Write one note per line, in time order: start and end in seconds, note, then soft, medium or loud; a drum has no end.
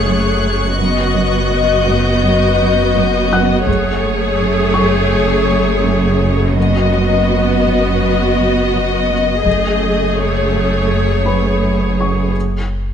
0.00 3.63 F#1 medium
0.00 3.64 F#1 soft
0.00 3.64 F#2 soft
0.00 0.78 A3 soft
0.00 0.74 G#4 soft
0.00 0.74 C#5 soft
0.00 3.27 C#6 soft
0.00 2.10 F#6 soft
0.07 0.29 F#2 medium
0.43 0.65 F#3 soft
0.78 1.01 F#2 soft
0.78 3.64 B3 soft
0.78 3.64 F#4 soft
0.78 3.64 D#5 soft
1.15 1.36 F#2 soft
1.52 1.73 F#2 soft
1.87 2.09 F#2 medium
2.10 3.27 G6 soft
2.23 2.45 F#2 soft
2.60 2.82 F#2 soft
2.96 3.18 F#2 medium
3.32 3.53 F#3 soft
3.32 5.45 F#5 soft
3.32 5.45 F#6 soft
3.67 9.42 F#1 soft
3.67 9.42 F#1 medium
3.67 3.89 F#2 medium
3.67 9.42 F#2 soft
3.67 6.52 A3 medium
3.67 6.52 G#4 medium
3.67 6.52 C#5 soft
3.67 taiko soft
4.04 4.26 F#2 soft
4.41 4.62 F#2 soft
4.74 4.98 F#2 medium
4.74 6.88 C#6 soft
5.12 5.34 F#2 soft
5.49 5.71 F#2 soft
5.85 6.06 F#2 soft
6.20 6.42 F#3 soft
6.57 6.78 F#2 soft
6.57 9.46 B3 soft
6.57 9.42 F#4 soft
6.57 10.14 D#5 soft
6.93 7.15 F#2 soft
7.30 7.51 F#2 soft
7.67 7.88 F#2 soft
8.02 8.24 F#2 soft
8.38 8.60 F#2 soft
8.75 8.96 F#2 soft
9.11 9.32 F#3 soft
9.45 12.94 F#1 medium
9.45 12.31 F#1 soft
9.45 9.67 F#2 soft
9.45 12.31 F#2 soft
9.45 12.35 A3 soft
9.45 12.31 G#4 soft
9.45 taiko soft
9.82 10.04 F#2 soft
10.17 10.40 F#2 soft
10.17 12.34 C#5 soft
10.55 10.76 F#2 soft
10.91 11.13 F#2 soft
11.26 11.49 F#2 soft
11.26 12.31 B4 soft
11.26 12.31 B5 soft
11.62 11.84 F#2 soft
12.00 12.21 F#3 soft
12.00 12.33 C#6 soft